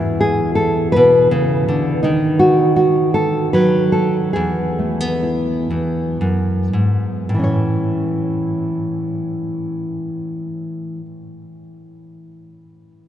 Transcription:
0, 0, Header, 1, 2, 480
1, 0, Start_track
1, 0, Key_signature, 3, "major"
1, 0, Tempo, 728155
1, 1343, Time_signature, 6, 3, 24, 8
1, 1343, Tempo, 750000
1, 2303, Tempo, 808625
1, 2783, Tempo, 878477
1, 3263, Tempo, 977199
1, 3743, Tempo, 1092896
1, 4223, Tempo, 1145038
1, 6649, End_track
2, 0, Start_track
2, 0, Title_t, "Nylon-string guitar"
2, 0, Program_c, 0, 24
2, 0, Note_on_c, 0, 40, 66
2, 0, Note_on_c, 0, 52, 45
2, 0, Note_on_c, 0, 64, 76
2, 135, Note_on_c, 0, 68, 84
2, 362, Note_off_c, 0, 68, 0
2, 365, Note_on_c, 0, 69, 84
2, 605, Note_off_c, 0, 69, 0
2, 608, Note_on_c, 0, 71, 99
2, 616, Note_off_c, 0, 64, 0
2, 635, Note_on_c, 0, 47, 61
2, 863, Note_off_c, 0, 47, 0
2, 865, Note_on_c, 0, 49, 62
2, 1104, Note_off_c, 0, 49, 0
2, 1111, Note_on_c, 0, 50, 55
2, 1335, Note_off_c, 0, 71, 0
2, 1336, Note_on_c, 0, 63, 89
2, 1344, Note_off_c, 0, 50, 0
2, 1345, Note_off_c, 0, 52, 0
2, 1346, Note_off_c, 0, 40, 0
2, 1347, Note_on_c, 0, 51, 64
2, 1571, Note_on_c, 0, 66, 84
2, 1800, Note_off_c, 0, 66, 0
2, 1807, Note_on_c, 0, 66, 76
2, 2047, Note_off_c, 0, 66, 0
2, 2049, Note_on_c, 0, 69, 88
2, 2053, Note_off_c, 0, 63, 0
2, 2297, Note_off_c, 0, 69, 0
2, 2300, Note_on_c, 0, 71, 87
2, 2306, Note_on_c, 0, 54, 58
2, 2529, Note_off_c, 0, 71, 0
2, 2531, Note_on_c, 0, 69, 72
2, 2755, Note_off_c, 0, 51, 0
2, 2755, Note_off_c, 0, 54, 0
2, 2772, Note_off_c, 0, 69, 0
2, 2774, Note_on_c, 0, 68, 78
2, 2789, Note_on_c, 0, 40, 67
2, 3024, Note_on_c, 0, 57, 42
2, 3143, Note_off_c, 0, 57, 0
2, 3143, Note_on_c, 0, 59, 33
2, 3265, Note_on_c, 0, 64, 42
2, 3493, Note_off_c, 0, 40, 0
2, 3499, Note_on_c, 0, 40, 52
2, 3744, Note_off_c, 0, 40, 0
2, 3746, Note_on_c, 0, 42, 55
2, 3975, Note_off_c, 0, 42, 0
2, 3977, Note_on_c, 0, 44, 49
2, 4194, Note_off_c, 0, 64, 0
2, 4220, Note_off_c, 0, 44, 0
2, 4220, Note_off_c, 0, 68, 0
2, 4222, Note_on_c, 0, 45, 53
2, 4225, Note_off_c, 0, 59, 0
2, 4243, Note_on_c, 0, 52, 50
2, 4263, Note_on_c, 0, 61, 48
2, 4282, Note_on_c, 0, 73, 69
2, 5755, Note_off_c, 0, 45, 0
2, 5777, Note_off_c, 0, 52, 0
2, 5797, Note_off_c, 0, 61, 0
2, 5799, Note_off_c, 0, 73, 0
2, 6649, End_track
0, 0, End_of_file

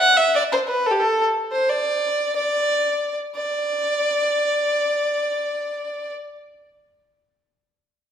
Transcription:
0, 0, Header, 1, 2, 480
1, 0, Start_track
1, 0, Tempo, 333890
1, 489, Time_signature, 6, 3, 24, 8
1, 11665, End_track
2, 0, Start_track
2, 0, Title_t, "Fiddle"
2, 0, Program_c, 0, 110
2, 0, Note_on_c, 0, 78, 98
2, 241, Note_on_c, 0, 76, 95
2, 263, Note_off_c, 0, 78, 0
2, 486, Note_off_c, 0, 76, 0
2, 509, Note_on_c, 0, 74, 101
2, 613, Note_off_c, 0, 74, 0
2, 749, Note_on_c, 0, 72, 89
2, 853, Note_off_c, 0, 72, 0
2, 970, Note_on_c, 0, 71, 84
2, 1242, Note_on_c, 0, 69, 93
2, 1263, Note_off_c, 0, 71, 0
2, 1311, Note_on_c, 0, 67, 74
2, 1333, Note_off_c, 0, 69, 0
2, 1432, Note_on_c, 0, 69, 94
2, 1454, Note_off_c, 0, 67, 0
2, 1773, Note_off_c, 0, 69, 0
2, 2186, Note_on_c, 0, 72, 87
2, 2427, Note_on_c, 0, 74, 88
2, 2449, Note_off_c, 0, 72, 0
2, 3375, Note_off_c, 0, 74, 0
2, 3384, Note_on_c, 0, 74, 89
2, 4526, Note_off_c, 0, 74, 0
2, 4813, Note_on_c, 0, 74, 94
2, 8787, Note_off_c, 0, 74, 0
2, 11665, End_track
0, 0, End_of_file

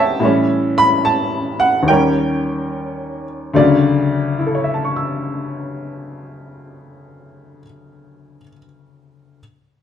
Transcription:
0, 0, Header, 1, 2, 480
1, 0, Start_track
1, 0, Key_signature, 2, "major"
1, 0, Tempo, 835655
1, 117, Time_signature, 4, 2, 24, 8
1, 5645, End_track
2, 0, Start_track
2, 0, Title_t, "Upright piano"
2, 0, Program_c, 0, 0
2, 0, Control_c, 0, 64, 127
2, 0, Note_on_c, 0, 41, 53
2, 0, Note_on_c, 0, 51, 44
2, 0, Note_on_c, 0, 57, 46
2, 0, Note_on_c, 0, 65, 59
2, 0, Note_on_c, 0, 69, 57
2, 0, Note_on_c, 0, 72, 67
2, 0, Note_on_c, 0, 73, 57
2, 0, Note_on_c, 0, 75, 62
2, 0, Note_on_c, 0, 76, 65
2, 0, Note_on_c, 0, 77, 85
2, 0, Note_on_c, 0, 78, 73
2, 0, Note_on_c, 0, 79, 94
2, 0, Note_on_c, 0, 81, 86
2, 104, Note_off_c, 0, 69, 0
2, 105, Note_off_c, 0, 72, 0
2, 105, Note_off_c, 0, 75, 0
2, 107, Note_off_c, 0, 41, 0
2, 114, Note_on_c, 0, 45, 60
2, 118, Note_off_c, 0, 51, 0
2, 123, Control_c, 0, 64, 0
2, 123, Note_on_c, 0, 52, 47
2, 125, Note_off_c, 0, 77, 0
2, 125, Note_off_c, 0, 79, 0
2, 128, Note_off_c, 0, 57, 0
2, 128, Note_off_c, 0, 78, 0
2, 131, Note_on_c, 0, 55, 48
2, 139, Note_off_c, 0, 65, 0
2, 143, Note_on_c, 0, 61, 64
2, 236, Control_c, 0, 64, 127
2, 447, Note_on_c, 0, 83, 94
2, 461, Note_off_c, 0, 81, 0
2, 602, Note_on_c, 0, 81, 86
2, 605, Note_off_c, 0, 83, 0
2, 900, Note_off_c, 0, 81, 0
2, 908, Note_off_c, 0, 76, 0
2, 909, Note_off_c, 0, 73, 0
2, 917, Note_on_c, 0, 78, 88
2, 1049, Note_on_c, 0, 39, 44
2, 1070, Note_on_c, 0, 51, 46
2, 1075, Note_off_c, 0, 45, 0
2, 1079, Note_on_c, 0, 79, 78
2, 1080, Note_off_c, 0, 52, 0
2, 1080, Note_off_c, 0, 78, 0
2, 1083, Note_off_c, 0, 55, 0
2, 1086, Control_c, 0, 64, 0
2, 1086, Note_on_c, 0, 70, 60
2, 1087, Note_on_c, 0, 73, 56
2, 1090, Note_off_c, 0, 61, 0
2, 1091, Note_on_c, 0, 55, 46
2, 1111, Note_on_c, 0, 61, 53
2, 1196, Control_c, 0, 64, 127
2, 1858, Note_off_c, 0, 79, 0
2, 2018, Note_off_c, 0, 70, 0
2, 2019, Note_off_c, 0, 73, 0
2, 2023, Note_off_c, 0, 39, 0
2, 2031, Note_on_c, 0, 38, 58
2, 2033, Note_off_c, 0, 51, 0
2, 2037, Note_on_c, 0, 50, 60
2, 2042, Note_on_c, 0, 54, 51
2, 2043, Control_c, 0, 64, 0
2, 2044, Note_off_c, 0, 55, 0
2, 2046, Note_on_c, 0, 74, 78
2, 2048, Note_on_c, 0, 49, 70
2, 2053, Note_off_c, 0, 61, 0
2, 2137, Control_c, 0, 64, 127
2, 2520, Note_on_c, 0, 64, 47
2, 2563, Note_on_c, 0, 69, 41
2, 2612, Note_on_c, 0, 73, 43
2, 2666, Note_on_c, 0, 76, 36
2, 2722, Note_on_c, 0, 81, 37
2, 2784, Note_on_c, 0, 85, 33
2, 2851, Note_on_c, 0, 88, 34
2, 4364, Note_off_c, 0, 74, 0
2, 4372, Note_off_c, 0, 38, 0
2, 4378, Note_off_c, 0, 50, 0
2, 4383, Note_off_c, 0, 54, 0
2, 4389, Note_off_c, 0, 49, 0
2, 4795, Note_off_c, 0, 64, 0
2, 4817, Note_off_c, 0, 69, 0
2, 4841, Note_off_c, 0, 73, 0
2, 4868, Note_off_c, 0, 76, 0
2, 4896, Note_off_c, 0, 81, 0
2, 4927, Note_off_c, 0, 85, 0
2, 4961, Note_off_c, 0, 88, 0
2, 5397, Control_c, 0, 64, 0
2, 5645, End_track
0, 0, End_of_file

